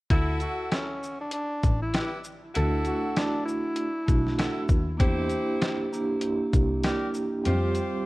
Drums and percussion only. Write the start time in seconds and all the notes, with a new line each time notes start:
0.10 kick, closed hi-hat
0.40 closed hi-hat, shaker
0.72 snare, closed hi-hat
1.03 shaker
1.31 closed hi-hat
1.63 kick, closed hi-hat, shaker
1.94 snare, closed hi-hat
2.24 shaker
2.55 closed hi-hat
2.85 closed hi-hat, shaker
3.16 snare, closed hi-hat
3.48 shaker
3.76 closed hi-hat
4.08 kick, closed hi-hat, shaker
4.27 snare
4.38 snare, closed hi-hat
4.69 kick, shaker
5.00 kick, closed hi-hat
5.30 closed hi-hat, shaker
5.62 snare, closed hi-hat
5.93 shaker
6.21 closed hi-hat
6.53 kick, closed hi-hat, shaker
6.83 snare, closed hi-hat
7.14 shaker
7.45 closed hi-hat
7.75 closed hi-hat, shaker